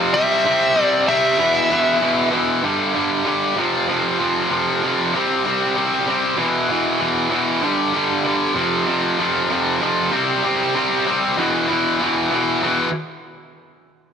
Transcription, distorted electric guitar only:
0.00 0.13 F2 medium
0.00 0.13 C3 medium
0.00 0.13 F3 medium
0.15 0.44 C3 medium
0.15 0.45 G3 loud
0.15 0.45 C4 medium
0.45 0.75 C3 medium
0.45 0.76 G3 medium
0.45 0.76 C4 medium
0.76 1.06 C3 loud
0.76 1.07 G3 loud
0.76 1.07 C4 loud
1.08 1.37 C3 medium
1.08 1.37 G3 loud
1.08 1.37 C4 loud
1.38 1.69 E2 loud
1.38 1.70 B2 loud
1.38 1.70 E3 loud
1.70 2.00 E2 medium
1.70 2.01 B2 medium
1.70 2.01 E3 medium
2.01 2.30 E2 loud
2.01 2.31 B2 loud
2.01 2.32 E3 loud
2.31 2.61 E2 medium
2.31 2.62 B2 medium
2.31 2.62 E3 medium
2.62 2.92 G2 medium
2.62 2.93 D3 medium
2.62 2.94 G3 medium
2.93 3.24 G2 medium
2.93 3.25 D3 medium
2.93 3.26 G3 medium
3.25 3.55 G2 medium
3.25 3.55 D3 medium
3.25 3.56 G3 medium
3.56 3.87 F2 medium
3.56 3.88 C3 medium
3.56 3.88 F3 loud
3.88 4.18 F2 medium
3.88 4.19 C3 medium
3.88 4.19 F3 loud
4.19 4.48 F2 medium
4.19 4.49 C3 medium
4.19 4.50 F3 medium
4.50 4.81 F2 medium
4.50 4.82 C3 medium
4.50 4.83 F3 loud
4.82 5.11 F2 medium
4.82 5.12 C3 medium
4.82 5.12 F3 medium
5.13 5.44 C3 medium
5.13 5.44 G3 loud
5.13 5.45 C4 loud
5.45 5.75 C3 medium
5.45 5.75 G3 medium
5.45 5.76 C4 medium
5.76 6.05 C3 medium
5.76 6.06 G3 medium
5.76 6.07 C4 loud
6.06 6.36 C3 medium
6.06 6.36 G3 medium
6.06 6.37 C4 medium
6.37 6.67 E2 medium
6.37 6.68 B2 loud
6.37 6.69 E3 loud
6.68 6.98 E2 medium
6.68 6.99 B2 medium
6.68 6.99 E3 medium
6.99 7.29 E2 loud
6.99 7.29 B2 medium
6.99 7.30 E3 loud
7.30 7.60 E2 medium
7.30 7.60 B2 medium
7.30 7.61 E3 medium
7.62 7.92 G2 medium
7.62 7.93 D3 medium
7.62 7.93 G3 medium
7.94 8.22 G2 medium
7.94 8.23 D3 medium
7.94 8.24 G3 medium
8.23 8.54 G2 medium
8.23 8.54 D3 medium
8.23 8.54 G3 loud
8.54 8.85 F2 medium
8.54 8.86 C3 medium
8.54 8.87 F3 loud
8.86 9.17 F2 medium
8.86 9.18 C3 loud
8.86 9.18 F3 medium
9.18 9.48 F2 medium
9.18 9.48 C3 medium
9.18 9.49 F3 medium
9.49 9.80 F2 loud
9.49 9.80 C3 loud
9.49 9.81 F3 medium
9.81 10.10 F2 medium
9.81 10.10 C3 medium
9.81 10.11 F3 medium
10.12 10.42 C3 medium
10.12 10.43 G3 medium
10.12 10.43 C4 medium
10.43 10.73 C3 medium
10.43 10.74 G3 medium
10.43 10.75 C4 medium
10.75 11.05 C3 medium
10.75 11.06 G3 medium
10.75 11.06 C4 medium
11.06 11.35 C3 medium
11.06 11.36 G3 medium
11.06 11.36 C4 loud
11.37 11.66 E2 loud
11.37 11.67 B2 loud
11.37 11.68 E3 loud
11.67 11.99 E2 medium
11.67 11.99 B2 medium
11.67 12.00 E3 medium
12.00 12.29 E2 medium
12.00 12.31 B2 medium
12.00 12.31 E3 loud
12.31 12.60 E2 medium
12.31 12.61 B2 medium
12.31 12.61 E3 medium
12.63 12.87 E2 medium
12.63 12.88 B2 medium
12.63 12.88 E3 medium

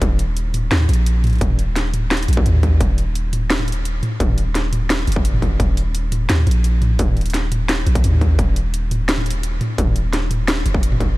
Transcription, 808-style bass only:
0.02 0.70 D#1 loud
0.71 0.87 D#2 medium
0.89 1.40 A#1 medium
1.41 2.27 D#1 loud
2.28 2.44 A#1 medium
2.46 2.80 D#2 medium
2.81 4.02 D#1 loud
4.20 5.06 D#1 loud
5.07 5.53 F1 medium
5.51 5.59 D#1 medium
5.60 6.28 D#1 loud
6.29 6.46 D#2 medium
6.47 6.98 A#1 medium
6.99 7.85 D#1 loud
7.86 8.03 A#1 medium
8.04 8.38 D#2 medium
8.39 9.60 D#1 loud
9.78 10.64 D#1 loud
10.66 11.11 F1 medium
11.09 11.17 D#1 medium

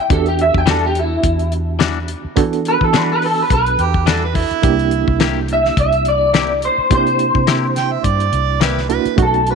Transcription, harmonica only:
3.80 4.10 G4 medium
4.08 4.26 A4 medium
4.25 4.38 B4 medium
4.36 5.34 E4 loud
7.77 7.93 G5 medium
7.92 8.06 E5 medium
8.04 8.62 D5 medium
8.61 8.88 B4 medium
8.89 9.17 B4 medium

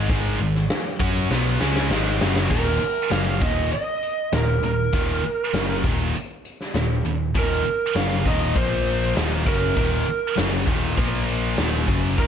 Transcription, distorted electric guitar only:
0.10 0.38 G#2 medium
0.10 0.38 D#3 medium
0.10 0.40 G#3 loud
0.39 0.64 G#2 medium
0.39 0.64 D#3 medium
1.00 1.29 F#3 medium
1.00 1.29 C#4 medium
1.00 1.30 F#4 medium
1.30 1.60 B2 medium
1.30 1.60 F#3 loud
1.30 1.60 B3 medium
1.61 1.90 C#3 medium
1.61 1.90 G#3 medium
1.61 1.91 C#4 loud
1.91 2.20 G#2 medium
1.91 2.20 D#3 loud
1.91 2.21 G#3 medium
2.21 2.50 F#2 medium
2.21 2.51 C#3 medium
2.21 2.51 F#3 loud
2.51 2.80 D#2 medium
2.51 2.81 A#2 medium
2.51 2.81 D#3 loud
2.82 muted distorted electric guitar stroke medium
3.12 3.41 F#2 medium
3.12 3.42 C#3 loud
3.12 3.42 F#3 medium
3.42 3.71 D#2 medium
3.42 3.71 A#2 medium
3.42 3.72 D#3 medium
4.33 4.57 D#2 medium
4.33 4.57 A#2 medium
4.64 4.87 D#2 medium
4.64 4.88 A#2 medium
4.93 5.22 D#2 medium
4.93 5.23 A#2 medium
4.93 5.23 D#3 loud
5.24 muted distorted electric guitar stroke medium
5.54 5.83 F#2 medium
5.54 5.83 C#3 loud
5.54 5.84 F#3 loud
5.84 6.13 D#2 medium
5.84 6.14 A#2 medium
5.84 6.14 D#3 medium
6.75 6.99 D#2 medium
6.75 6.99 A#2 medium
7.06 7.29 D#2 medium
7.06 7.30 A#2 medium
7.35 7.64 D#2 loud
7.35 7.65 A#2 medium
7.35 7.65 D#3 loud
7.67 muted distorted electric guitar stroke medium
7.96 8.25 F#2 medium
7.96 8.25 C#3 loud
7.96 8.25 F#3 loud
8.26 8.55 D#2 medium
8.26 8.55 A#2 medium
8.26 8.56 D#3 loud
8.56 9.15 A#2 medium
8.56 9.16 F3 medium
8.56 9.16 A#3 medium
9.15 9.45 D#2 medium
9.15 9.46 A#2 medium
9.15 9.46 D#3 medium
9.46 9.75 F#2 medium
9.46 9.76 C#3 medium
9.46 9.76 F#3 loud
9.76 10.05 D#2 medium
9.76 10.06 A#2 medium
9.76 10.06 D#3 loud
10.07 muted distorted electric guitar stroke medium
10.37 10.66 F#2 medium
10.37 10.66 C#3 medium
10.37 10.67 F#3 loud
10.66 10.96 D#2 medium
10.66 10.95 A#2 medium
10.66 10.97 D#3 medium
10.96 11.56 A#2 medium
10.96 11.57 F3 loud
10.96 11.57 A#3 medium
11.58 11.87 D#2 medium
11.58 11.88 A#2 medium
11.58 11.88 D#3 loud
11.87 12.17 F#2 medium
11.87 12.17 C#3 medium
11.87 12.17 F#3 medium
12.18 12.27 D#2 medium
12.18 12.27 A#2 medium
12.18 12.27 D#3 medium

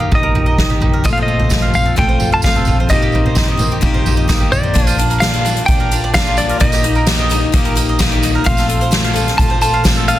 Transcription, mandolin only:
0.00 0.10 D#4 medium
0.00 0.23 G4 medium
0.00 0.24 D#5 medium
0.12 0.34 D#4 medium
0.23 0.70 A#4 medium
0.35 0.57 D#4 medium
0.46 0.93 D#5 medium
0.58 0.80 D#4 medium
0.70 1.05 G4 medium
0.82 1.05 D#4 medium
0.94 1.05 A#4 medium
1.05 1.27 F4 medium
1.18 1.39 A4 medium
1.28 1.50 F4 medium
1.39 1.85 C5 medium
1.51 1.96 F4 medium
1.62 2.09 F5 medium
1.85 2.08 A4 medium
1.97 2.19 F4 medium
2.09 2.55 C5 medium
2.20 2.43 F4 medium
2.32 2.79 F5 medium
2.44 2.66 F4 medium
2.56 2.80 A4 medium
2.67 2.90 F4 medium
2.80 2.91 C5 medium
2.91 3.14 D#4 medium
3.02 3.48 G4 medium
3.15 3.36 D#4 medium
3.26 3.48 C5 medium
3.37 3.82 D#4 medium
3.48 3.94 D#5 medium
3.72 4.18 G4 medium
3.83 4.05 D#4 medium
3.94 4.17 C5 medium
4.07 4.28 D#4 medium
4.17 4.63 D#5 medium
4.29 4.51 D#4 medium
4.40 4.73 G4 medium
4.52 4.75 D#4 medium
4.63 4.75 C5 medium
4.74 4.97 D4 medium
4.87 5.33 F4 medium
4.99 5.20 D4 medium
5.10 5.33 A#4 medium
5.21 5.44 D4 medium
5.34 5.80 D5 medium
5.45 5.67 D4 medium
5.68 5.91 D4 medium
5.80 6.04 A#4 medium
5.93 6.14 D4 medium
6.04 6.50 D5 medium
6.16 6.38 D4 medium
6.27 6.61 F4 medium
6.39 6.60 D4 medium
6.50 6.61 A#4 medium
6.61 6.83 D#4 loud
6.73 6.95 G4 medium
6.84 7.06 D#4 medium
6.96 7.42 A#4 medium
7.07 7.30 D#4 medium
7.19 7.65 D#5 medium
7.31 7.52 D#4 medium
7.53 7.75 D#4 medium
7.65 8.11 A#4 medium
7.76 7.99 D#4 medium
7.89 8.35 D#5 medium
8.00 8.23 D#4 medium
8.12 8.46 G4 medium
8.24 8.46 D#4 medium
8.35 8.46 A#4 medium
8.46 8.68 F4 loud
8.59 8.81 A4 medium
8.69 8.91 F4 medium
8.81 9.27 C5 medium
8.93 9.14 F4 medium
9.05 9.50 F5 medium
9.16 9.39 F4 medium
9.40 9.61 F4 medium
9.50 9.96 C5 medium
9.62 9.84 F4 medium
9.74 10.19 F5 medium
9.85 10.07 F4 medium
9.96 10.19 A4 medium
10.08 10.19 F4 medium

